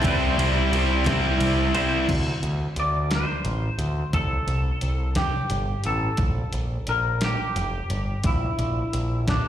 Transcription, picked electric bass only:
0.04 0.36 C2 medium
0.38 0.70 C2 medium
0.72 1.04 C2 medium
1.06 1.39 C2 medium
1.40 1.73 C2 medium
1.75 2.07 C2 medium
2.08 2.32 D2 medium
2.43 2.66 D2 medium
2.76 3.23 D2 medium
3.45 3.68 A1 medium
3.78 4.02 D2 medium
4.13 4.37 C2 medium
4.47 4.71 C2 medium
4.82 5.29 C2 medium
5.50 5.74 G1 medium
5.85 6.09 A1 medium
6.18 6.42 A#1 medium
6.54 6.77 A#1 medium
6.88 7.35 A#1 medium
7.56 7.80 F1 medium
7.90 8.14 G1 medium
8.24 8.48 A#1 medium
8.59 8.82 A#1 medium
8.93 9.40 A#1 medium

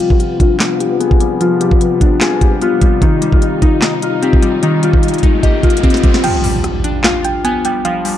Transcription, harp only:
0.00 0.19 F4 loud
0.00 0.85 F5 medium
0.00 0.94 G5 medium
0.11 0.80 G4 medium
0.20 0.40 F4 medium
0.40 0.59 F4 medium
0.60 1.40 F4 medium
0.80 1.06 G4 medium
1.00 1.67 G#4 medium
1.41 2.62 F4 loud
1.61 2.27 G4 medium
2.21 2.47 G#4 medium
2.41 4.22 G4 medium
2.62 3.32 F4 medium
3.02 3.42 D#4 medium
3.32 4.02 F4 medium
3.42 3.62 D#4 medium
3.62 3.82 D#4 medium
3.82 4.62 D#4 medium
4.03 4.83 F4 medium
4.23 5.43 G4 medium
4.63 7.33 D#4 loud
4.83 5.63 F4 medium
5.43 5.83 G4 medium
5.63 8.15 F4 medium
5.83 8.18 G4 medium

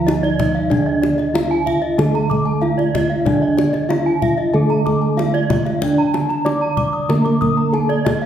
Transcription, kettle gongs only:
0.00 1.31 D3 medium
0.07 0.15 D#4 soft
0.71 2.58 D4 medium
1.35 1.43 D#4 soft
1.99 3.86 D3 medium
2.63 2.71 D#4 soft
3.26 5.14 D4 medium
3.90 3.98 D#4 soft
4.55 6.42 D3 medium
5.18 5.26 D#4 soft
5.82 7.69 D4 medium
6.46 6.54 D#4 soft
7.09 8.26 D3 medium
7.73 7.81 D#4 soft

